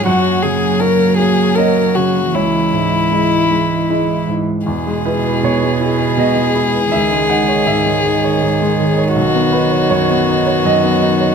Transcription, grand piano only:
X:1
M:3/4
L:1/16
Q:1/4=80
K:C#dor
V:1 name="Grand piano"
f8 d4 | c8- c2 z2 | z2 B2 c4 d4 | e2 f2 e8 |
z2 B2 c4 d4 |]
V:2 name="Grand piano"
F,,2 C,2 [A,Fc]2 A,2 [A,Fc]2 C,2 | C,,2 G,,2 [G,Ed]2 G,2 [G,Ed]2 G,,2 | E,, G, E B B,, G, E B B,, G, E B | C,, G, D c G,, G, D, c G,, G, D, c |
B,,, B, D c F,, B, D c F,, B, D c |]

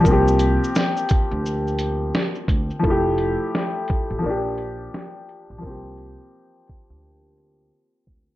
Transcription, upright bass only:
X:1
M:4/4
L:1/16
Q:"Swing 16ths" 1/4=86
K:Cmix
V:1 name="Upright bass" clef=bass
C,,3 z4 D,,4- D,, z2 D,, z | F,,,3 z4 A,,, B,,,4 z3 B,,, | C,,3 z4 D,,4- D,, z2 D,, z |]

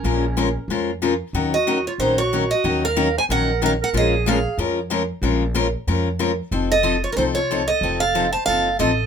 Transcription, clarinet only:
X:1
M:4/4
L:1/16
Q:"Swing" 1/4=185
K:Bbm
V:1 name="Clarinet"
D8- D2 z6 | z2 G4 F2 E2 G4 G2- | G2 B4 c2 B4 B2 B2 | A4 A4 z8 |
z16 | z2 =A4 F3/2 D/2 E2 F4 A2- | =A2 A4 c2 A4 A4 |]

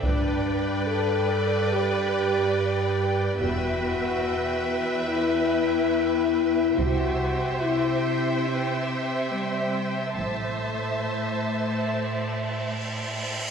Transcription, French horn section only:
X:1
M:12/8
L:1/8
Q:3/8=71
K:G
V:1 name="French horn section"
D3 A3 G6 | F6 E6 | F3 E3 C3 G,3 | A,8- A, z3 |]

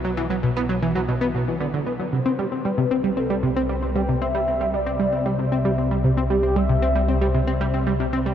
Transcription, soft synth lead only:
X:1
M:4/4
L:1/8
Q:1/4=115
K:Clyd
V:1 name="Soft synth lead"
z8 | c2 B2 A c2 g | e2 d2 c e2 z | G e2 c4 z |]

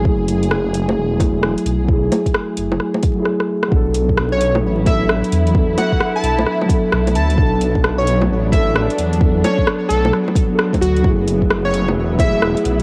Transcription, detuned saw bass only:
X:1
M:4/4
L:1/8
Q:"Swing 16ths" 1/4=131
K:Bdor
V:1 name="Detuned saw bass" clef=bass
F,,,4 E,,,2 z B,,,- | B,,, z2 F,,, z4 | B,,,4 A,,,2 z E,,- | E,, z2 B,,, z2 B,,, D,, |
B,,,4 A,,,2 z E,,- | E,, z2 B,,, z3 D,, | F,,,4 E,,,2 z B,,, |]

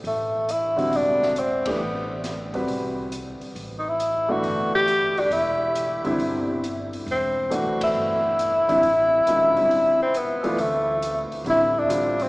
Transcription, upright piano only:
X:1
M:4/4
L:1/8
Q:"Swing" 1/4=137
K:Clyd
V:1 name="Upright piano"
z3 [D,G,CF]3 z [E,A,DG] | z3 [G,CFB]3 z2 | z3 [E,A,DF]3 z2 | z3 [D,G,CE]3 z2 |
z2 [E,A,DF]3 z2 [D,G,CE] | z2 [^D,^G,^C=F] [=D,=G,=CE]2 z2 [E,A,DF] | [K:Dm] z4 [D,G,CE] z [D,G,CF] z |]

